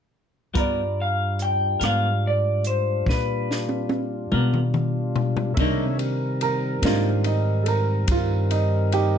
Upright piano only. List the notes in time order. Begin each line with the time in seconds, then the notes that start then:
0.55 F4 D5 A#5 B5
5.57 D#3 A#3 D4
6.42 A#4
6.83 D#3 A#3 D4 F4
7.26 D#4
7.64 A4
7.68 A#4
8.12 F4
8.51 D#4
8.93 D#4 G4